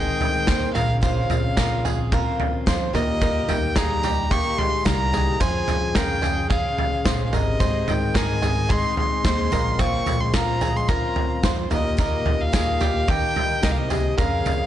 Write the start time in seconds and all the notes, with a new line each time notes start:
Already playing: G#2 D#3 G#3 C4 D#4 G#4 G5
0.21 floor tom
0.47 D#2 G#3 C4 D#4 G#4 C5, kick, snare, floor tom, tambourine
0.74 A#1 C#3 C4 F4 A#4 F5, floor tom, tambourine
0.78 C#4
1.01 A#2 C#3 F3 C4 C#4 F4 C5 F5, kick, floor tom, tambourine
1.30 A#1, floor tom, tambourine
1.57 F3 C4 C#4 F4 A#4, kick, snare, floor tom, tambourine
1.85 G#4, floor tom, tambourine
2.12 A#2 F3 C4 C#4 F4 A#4, kick, floor tom, tambourine
2.40 floor tom
2.66 F2 F3 C4 C#4 F4 C5, kick, snare, floor tom, tambourine
2.93 D#2 A#2 A#3 D#4 G4 A#4 D#5, floor tom, tambourine
3.21 D#3 A#3 D#4 G4 A#4, kick, floor tom, tambourine
3.49 D#2 D#3 G5, floor tom, tambourine
3.76 D#3 G3 A#3 D#4 G4 G#4 A#5, kick, snare, floor tom, tambourine
4.03 A#3 D#4 G4, floor tom, tambourine
4.31 D#3 A#3 D#4 G4 C#6, kick, floor tom, tambourine
4.58 G#3 C6, floor tom
4.85 C2 D#3 G3 A#3 D#4 G4 A#4 A#5, kick, snare, floor tom, tambourine
5.12 A#3 D#4 G4 G#4, floor tom, tambourine
5.40 F2 F3 G#3 C#4 G#4 C5 G#5, kick, floor tom, tambourine
5.68 F2, floor tom, tambourine
5.95 C#3 F3 G#3 C#4 G#4 A#4 G5, kick, snare, floor tom, tambourine
6.22 G#4, floor tom, tambourine
6.50 C#3 F3 G#3 C#4 G#4 F5, kick, floor tom, tambourine
6.78 floor tom
7.04 A#1 F3 G#3 C#4 G#4 C5, kick, snare, floor tom, tambourine
7.26 C#3 F5
7.33 G#1 C3 G#3 C#4 G#4 A#4 D#5, floor tom, tambourine
7.60 G#2 D#3 G#3 C4 D#4 G#4 C5, kick, floor tom, tambourine
7.88 G#2 D#3 G5, floor tom, tambourine
8.14 D#3 G#3 C4 D#4 G#4 A#4 G#5, kick, snare, floor tom, tambourine
8.42 G#3 C4 D#4 G#4, floor tom, tambourine
8.69 G#2 D#3 G#3 C4 D#4 G#4 C6, kick, floor tom, tambourine
8.97 G#3 C6, floor tom
9.24 D#2 G#3 C4 D#4 G#4 C5, kick, snare, floor tom, tambourine
9.52 A#1 C4 C#4 F4 A#4, floor tom, tambourine
9.79 A#2 F3 A#3 C4 C#4 F4 C#6, kick, floor tom, tambourine
10.06 A#1, floor tom, tambourine
10.20 G#3 C6
10.34 F3 C4 C#4 F4 A#4 A#5, kick, snare, floor tom, tambourine
10.61 G#4, floor tom, tambourine
10.75 G#3 C6
10.88 A#2 F3 C4 C#4 F4 A#4 A#5, kick, floor tom, tambourine
11.16 floor tom
11.43 F2 F3 C4 C#4 F4 C5, kick, snare, floor tom, tambourine
11.70 D#2 A#2 A#3 D#4 G4 A#4 D#5, floor tom, tambourine
11.97 A#2 D#3 A#3 D#4 G4 A#4 D#5, kick, floor tom, tambourine
12.26 D#2, floor tom
12.41 A#2 F5
12.52 D#3 A#3 D#4 G4 G#4, kick, snare, floor tom, tambourine
12.79 A#3 D#4 G4, floor tom, tambourine
13.07 D#3 A#3 D#4 G4 G5, kick, floor tom, tambourine
13.36 floor tom
13.62 C2 A#2 D#3 A#3 D#4 G4 A#4 D#5, kick, snare, floor tom, tambourine
13.69 C#3 F5
13.77 C3 D#5
13.90 A#3 D#4 G4 G#4, floor tom, tambourine
14.18 F2 C#3 F3 G#3 C#4 G#4 A#4 F5, kick, floor tom, tambourine
14.46 F2, floor tom, tambourine